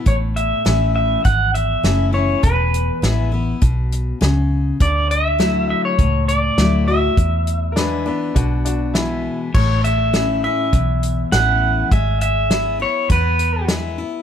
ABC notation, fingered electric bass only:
X:1
M:4/4
L:1/8
Q:1/4=101
K:A
V:1 name="Fingered electric bass" clef=bass
A,,,2 A,,,2 G,,,2 F,,,2 | E,,,2 A,,,2 B,,,2 C,,2 | D,,4 C,,2 D,,2 | E,,4 B,,,4 |
A,,,4 B,,,2 A,,,2 | G,,,4 E,,4 |]